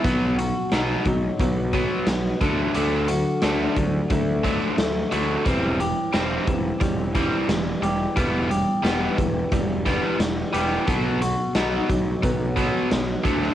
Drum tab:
HH |x-x-x-x-x-x-x-x-|x-x-x-x-x-x-x-x-|x-x-x-x-x-x-x-x-|x-x-x-x-x-x-x-x-|
SD |----o-------o---|----o-------o---|----o-------o---|----o-----o-o---|
BD |o-----o-o-o---o-|------o-o-o-----|o-----o-o-o-----|o-----o-o-o-----|

HH |x-x-x-x-x-x-x-x-|
SD |----o-------o--o|
BD |o-----o-o-o---o-|